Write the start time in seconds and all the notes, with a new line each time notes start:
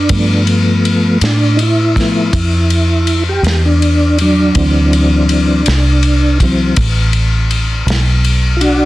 Already playing: D4
0.09 G2 F3 A3 B3, kick, ride
0.47 ride
0.85 ride
1.21 A2 D4, snare, ride
1.57 D#4, ride
1.62 E4
1.96 F3 A3 B3, kick, snare, ride
2.33 F2, kick, ride
2.70 ride
3.07 ride
3.29 G4
3.43 E2, snare, ride
3.65 D4
3.82 ride
4.18 F#3 D4, ride
4.55 D2 E3 F#3 C4, kick, ride
4.93 ride
5.29 ride
5.66 C2, snare, ride
6.03 ride
6.40 E3 F#3 C4, kick, ride
6.76 A1, kick, ride
7.13 ride
7.51 ride
7.86 B1, snare, ride
8.24 ride
8.57 F4
8.61 D4 F#4, ride